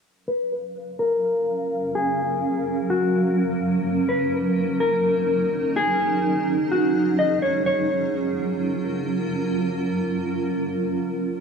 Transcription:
0.05 ambient pad F#3 C#4 A#4 F5
0.28 clean electric guitar B4
0.99 clean electric guitar A#4
1.95 clean electric guitar G#4
2.90 clean electric guitar F#4
3.85 ambient pad D#4
4.09 clean electric guitar B4
4.80 clean electric guitar A#4
5.76 ambient pad G#4, clean electric guitar G#4
6.72 clean electric guitar F#4
7.19 clean electric guitar D#5
7.42 clean electric guitar C#5
7.66 ambient pad F#3 C#4 F4 A#4, clean electric guitar C#5

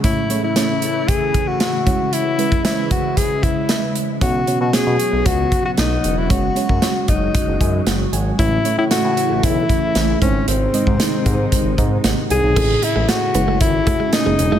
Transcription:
Already playing: string machine C#3
0.03 fm electric piano A2 A3 C#4 E4 C#5, string machine E3 A3 E4, alto saxophone E4, kick, closed hi-hat
0.29 fm electric piano A3 C#4 E4 C#5, closed hi-hat
0.44 alto saxophone E4
0.55 fm electric piano A3 C#4 E4 C#5, snare, closed hi-hat
0.82 closed hi-hat
1.08 alto saxophone G#4, kick, closed hi-hat
1.34 kick, closed hi-hat
1.48 alto saxophone F#4
1.60 alto saxophone F#4, snare, closed hi-hat
1.86 fm electric piano C#3 G#3 C#4 E4 C#5, string machine E3 G#3, kick, closed hi-hat
2.13 alto saxophone E4, closed hi-hat
2.38 fm electric piano G#3 C#4 E4 B4, closed hi-hat
2.52 kick, closed hi-hat
2.64 fm electric piano G#3 C#4 E4 C5, alto saxophone E4, snare, closed hi-hat
2.72 fm electric piano C#5
2.91 alto saxophone F#4, kick, closed hi-hat
3.17 alto saxophone G#4, kick, closed hi-hat
3.43 alto saxophone E4, kick, closed hi-hat
3.69 snare, closed hi-hat
3.95 closed hi-hat
4.21 analog synth bass B1, fm electric piano B2 B3 C#4 F#4 C#5, string machine F#3 B3 F#4, alto saxophone F#4, kick, closed hi-hat
4.47 fm electric piano B3 C#4 F#4 C#5, closed hi-hat
4.61 analog synth bass B2, alto saxophone F#4
4.73 fm electric piano B3 C#4 F#4 C#5, alto saxophone G#4, snare, closed hi-hat
4.87 analog synth bass B2
5.00 closed hi-hat
5.13 analog synth bass B1
5.26 analog synth bass C#2, alto saxophone F#4, kick, closed hi-hat
5.52 kick, closed hi-hat
5.65 alto saxophone F#4
5.77 analog synth bass B1, alto saxophone D#4, snare, closed hi-hat
6.04 analog synth bass E1, closed hi-hat
6.18 alto saxophone E4
6.29 analog synth bass F#1, string machine F#3 G#3, fm electric piano G#3 C#4 F#4 C#5, alto saxophone F#4, kick, closed hi-hat
6.56 fm electric piano G#3 C#4 F#4 C#5, closed hi-hat
6.69 analog synth bass F#2, kick
6.82 fm electric piano G#3 C#4 F#4 C#5, snare, closed hi-hat
7.08 analog synth bass F#1, alto saxophone D#4, kick, closed hi-hat
7.35 kick, closed hi-hat
7.48 analog synth bass F#1
7.61 analog synth bass F#2, kick, closed hi-hat
7.87 analog synth bass F#1, fm electric piano F#5, snare, closed hi-hat
8.13 analog synth bass G#1, fm electric piano G#5, closed hi-hat
8.38 analog synth bass A1, fm electric piano A2 A3 C#4 E4 C#5, string machine C#3 E3 A3 E4, alto saxophone E4, kick, closed hi-hat
8.65 fm electric piano A3 C#4 E4 C#5, closed hi-hat
8.78 analog synth bass A2, alto saxophone E4
8.91 analog synth bass A2, fm electric piano A3 C#4 E4 A4, alto saxophone F#4, snare, closed hi-hat
9.04 analog synth bass A2
9.17 closed hi-hat
9.30 analog synth bass A1
9.43 analog synth bass B1, alto saxophone E4, kick, closed hi-hat
9.69 kick, closed hi-hat
9.95 analog synth bass A1, snare, closed hi-hat
10.21 analog synth bass G#1, fm electric piano G#2 G#3 C4 D#4 C5, string machine C3 D#3 G#3 D#4, alto saxophone C#4, kick, closed hi-hat
10.48 analog synth bass G#1, alto saxophone C4, closed hi-hat
10.73 fm electric piano G#3 C4 D#4 D#5, closed hi-hat
10.87 analog synth bass G#2, kick
10.99 fm electric piano G#3 C4 D#4 C5, snare, closed hi-hat
11.26 analog synth bass G#2, kick, closed hi-hat
11.52 kick, closed hi-hat
11.65 analog synth bass G#1
11.78 analog synth bass G#2, fm electric piano D#5, kick, closed hi-hat
12.04 analog synth bass G#1, fm electric piano F#5, snare, closed hi-hat
12.30 analog synth bass C2, alto saxophone G#4, fm electric piano G#5, closed hi-hat
12.44 analog synth bass B1
12.56 fm electric piano A2 C#4 E4 G#4 A4, string machine C#3 C#4, clean electric guitar A3, kick, crash
12.82 alto saxophone E4, muted clean electric guitar stroke, closed hi-hat
12.96 analog synth bass A1, clean electric guitar G#3
13.09 alto saxophone F#4, muted clean electric guitar stroke, snare, closed hi-hat
13.34 analog synth bass F#1, fm electric piano G#3 C#4 E4 F#4, clean electric guitar B3, closed hi-hat
13.48 clean electric guitar A3
13.61 analog synth bass G#1, alto saxophone E4, muted clean electric guitar stroke, kick, closed hi-hat
13.87 clean electric guitar A3, kick, closed hi-hat
14.00 clean electric guitar G#3
14.13 alto saxophone D#4, snare, closed hi-hat
14.26 analog synth bass F#1, clean electric guitar G#3
14.39 analog synth bass E1, muted clean electric guitar stroke, closed hi-hat
14.51 analog synth bass F#1, fm electric piano G#3 C#4 E4 A4, clean electric guitar A3

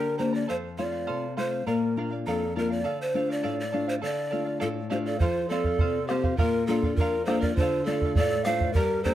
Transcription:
Already playing: nylon-string guitar D3, charango G4 A#4 D5 G5 A#5, pan flute A#4
0.18 nylon-string guitar A#3 D4 G4, charango A#4 D5 G5 A#5, pan flute C5
0.33 charango A#4 D5 A#5, pan flute D5
0.48 nylon-string guitar F2, charango A4 C5 F5, pan flute C5
0.77 nylon-string guitar A3 C4 F4, charango A4 C5 F5, pan flute D5
0.92 charango C5 F5
1.07 nylon-string guitar C3, charango A4 C5 F5
1.37 nylon-string guitar A3 C4 F4, charango A4 C5 F5, pan flute C5
1.51 charango C5 F5
1.66 nylon-string guitar A#2, charango A#4 D5 F5, pan flute A#4
1.97 nylon-string guitar A#3 D4 F4, charango A#4 D5 F5
2.11 charango D5 F5
2.26 nylon-string guitar F2, pan flute A4, charango A#4 D5 F5
2.55 nylon-string guitar A#3 D4 F4, charango A#4 D5 F5, pan flute A#4
2.70 charango D5 F5, pan flute D5
2.84 nylon-string guitar D3, charango A4 D5 F5
3.02 pan flute C5
3.14 nylon-string guitar A3 D4 F4, charango A4 D5 F5
3.29 charango D5 F5, pan flute D5
3.43 nylon-string guitar A2, charango A4 D5 F5
3.60 pan flute D5
3.72 nylon-string guitar A3 D4 F4, charango A4 D5 F5
3.88 pan flute C5, charango D5 F5
4.02 nylon-string guitar D3, charango A4 D5 F5, pan flute D5
4.31 nylon-string guitar A3 D4 F4, charango A4 D5 F5
4.45 charango D5 F5
4.60 nylon-string guitar A2, pan flute F4 A4, charango A4 D5 F5
4.90 nylon-string guitar A3 D4 F4, pan flute G4 C5, charango A4 D5 F5
5.06 pan flute A4 D5, charango D5 F5
5.20 nylon-string guitar F3, pan flute F4 C5, charango A4 C5 F5, bombo low
5.48 nylon-string guitar C4 F4 A4, pan flute A4 D5, charango A4 C5
5.52 charango F5
5.64 charango C5 F5, bombo low
5.79 nylon-string guitar C3, charango A4 C5 F5, bombo low
6.07 nylon-string guitar C4 F4, pan flute G4 C5, charango A4 C5 F5, bombo rim
6.11 nylon-string guitar A4
6.24 charango C5 F5, bombo low
6.37 nylon-string guitar A#2, pan flute F4 A#4, charango A#4 D5 F5, bombo low
6.66 nylon-string guitar A#3 D4 F4, pan flute F4 A4, charango A#4 D5
6.70 charango F5
6.83 charango D5 F5, bombo low
6.96 nylon-string guitar F2, pan flute F4 A#4, bombo low
7.00 charango A#4 D5 F5
7.25 nylon-string guitar A#3 D4 F4, pan flute A4 C5, bombo rim
7.30 charango A#4 D5 F5
7.39 pan flute A#4 D5, bombo low
7.44 charango D5 F5
7.53 nylon-string guitar D3, pan flute F4 C5, bombo low
7.60 charango A4 D5 F5
7.84 nylon-string guitar A3 D4 F4, pan flute A4 D5
7.90 charango A4 D5 F5
8.02 charango F5, bombo low
8.06 charango D5
8.15 nylon-string guitar A2, pan flute A4 D5, bombo low
8.19 charango A4 D5 F5
8.45 nylon-string guitar A3 D4 F4, charango A4 D5, pan flute C5 F5, bombo rim
8.49 charango F5
8.61 charango D5 F5, bombo low
8.73 nylon-string guitar G2, pan flute G4 A#4, charango G4 A#4 D5 G5 A#5, bombo low
9.03 nylon-string guitar A#3 D4 G4, pan flute A4 C5, charango A#4 D5 G5 A#5, bombo low

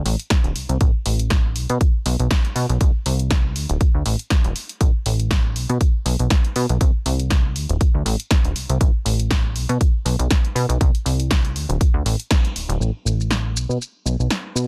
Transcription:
0.05 analog synth bass A1, open hi-hat
0.20 closed hi-hat
0.30 kick, snare, closed hi-hat
0.44 analog synth bass D1, closed hi-hat
0.55 analog synth bass C2, open hi-hat
0.69 analog synth bass C2, closed hi-hat
0.81 kick, closed hi-hat
1.06 analog synth bass A1, open hi-hat
1.19 closed hi-hat
1.30 kick, snare, closed hi-hat
1.56 analog synth bass B1, open hi-hat
1.70 analog synth bass B2, closed hi-hat
1.81 kick, closed hi-hat
2.06 analog synth bass B1, open hi-hat
2.19 analog synth bass B1, closed hi-hat
2.31 kick, snare, closed hi-hat
2.45 closed hi-hat
2.55 analog synth bass B2, open hi-hat
2.69 analog synth bass B1, closed hi-hat
2.81 kick, closed hi-hat
3.06 analog synth bass C2, open hi-hat
3.19 closed hi-hat
3.31 kick, snare, closed hi-hat
3.56 analog synth bass D2, open hi-hat
3.69 analog synth bass D1, closed hi-hat
3.81 kick, closed hi-hat
3.95 analog synth bass D2
4.06 analog synth bass A1, open hi-hat
4.19 closed hi-hat
4.30 kick, snare, closed hi-hat
4.44 analog synth bass D1, closed hi-hat
4.56 open hi-hat
4.69 closed hi-hat
4.81 analog synth bass A1, kick, closed hi-hat
5.06 analog synth bass A1, open hi-hat
5.20 closed hi-hat
5.31 kick, snare, closed hi-hat
5.55 analog synth bass B1, open hi-hat
5.69 analog synth bass B2, closed hi-hat
5.81 kick, closed hi-hat
6.06 analog synth bass B1, open hi-hat
6.19 analog synth bass B1, closed hi-hat
6.30 kick, snare, closed hi-hat
6.45 closed hi-hat
6.56 analog synth bass B2, open hi-hat
6.69 analog synth bass B1, closed hi-hat
6.81 analog synth bass C2, kick, closed hi-hat
7.06 analog synth bass C2, open hi-hat
7.20 closed hi-hat
7.30 kick, snare, closed hi-hat
7.56 analog synth bass D2, open hi-hat
7.69 analog synth bass D1, closed hi-hat
7.81 kick, closed hi-hat
7.94 analog synth bass D2
8.06 analog synth bass A1, open hi-hat
8.20 closed hi-hat
8.31 kick, snare, closed hi-hat
8.44 analog synth bass D1, closed hi-hat
8.56 analog synth bass C2, open hi-hat
8.69 analog synth bass C2, closed hi-hat
8.81 analog synth bass A1, kick, closed hi-hat
9.05 analog synth bass A1, open hi-hat
9.20 closed hi-hat
9.31 kick, snare, closed hi-hat
9.56 analog synth bass B1, open hi-hat
9.69 analog synth bass B2, closed hi-hat
9.81 kick, closed hi-hat
10.05 analog synth bass B1, open hi-hat
10.19 analog synth bass B1, closed hi-hat
10.30 kick, snare, closed hi-hat
10.45 closed hi-hat
10.55 analog synth bass B2, open hi-hat
10.69 analog synth bass B1, closed hi-hat
10.81 analog synth bass C2, kick, closed hi-hat
10.95 closed hi-hat
11.06 analog synth bass C2, open hi-hat
11.20 closed hi-hat
11.31 kick, snare, closed hi-hat
11.45 closed hi-hat
11.55 analog synth bass D2, open hi-hat
11.69 analog synth bass D1, closed hi-hat
11.81 kick, closed hi-hat
11.94 analog synth bass D2
12.05 analog synth bass A1, open hi-hat
12.20 closed hi-hat
12.31 kick, snare, closed hi-hat
12.45 closed hi-hat
12.55 analog synth bass D1, open hi-hat
12.69 analog synth bass D1, closed hi-hat
12.80 analog synth bass A1, shaker
13.05 analog synth bass A1, shaker
13.20 shaker
13.31 snare, shaker
13.55 analog synth bass B1, shaker
13.69 analog synth bass B2, shaker
13.82 shaker
14.05 analog synth bass B1, shaker
14.19 analog synth bass B1, shaker
14.30 snare, shaker
14.55 analog synth bass B2, shaker

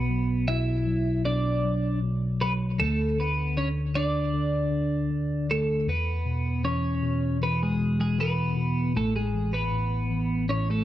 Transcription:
Already playing: tine electric piano B1 B2, clean electric guitar B3 B4
0.10 tine electric piano F#3
0.48 tine electric piano B2, clean electric guitar E4 E5
0.86 tine electric piano F#3
1.25 tine electric piano B2, clean electric guitar D4 D5
1.65 tine electric piano F#3
2.02 tine electric piano B2
2.41 tine electric piano F#3, clean electric guitar B3 B4
2.78 tine electric piano D2 D3, clean electric guitar A3 A4
3.17 tine electric piano D3, clean electric guitar B3 B4
3.56 tine electric piano D3, clean electric guitar C#4 C#5
3.94 tine electric piano D3, clean electric guitar D4 D5
4.33 tine electric piano D3
4.71 tine electric piano D3
5.11 tine electric piano D3
5.49 tine electric piano D3, clean electric guitar A3 A4
5.87 tine electric piano E2, clean electric guitar B3 B4
6.26 tine electric piano B2
6.64 tine electric piano E3, clean electric guitar C#4 C#5
7.03 tine electric piano B2
7.41 tine electric piano E3, clean electric guitar B3 B4
7.63 clean electric guitar G#3 G#4
7.79 tine electric piano B2
8.00 clean electric guitar G#3 G#4
8.18 tine electric piano E3, clean electric guitar B3 B4
8.57 tine electric piano B2
8.95 tine electric piano A1 A2, clean electric guitar A3 A4
9.16 clean electric guitar G#3 G#4
9.34 tine electric piano E3
9.53 clean electric guitar B3 B4
9.72 tine electric piano A2
10.11 tine electric piano E3
10.49 tine electric piano A2, clean electric guitar C#4 C#5
10.70 clean electric guitar A3 A4

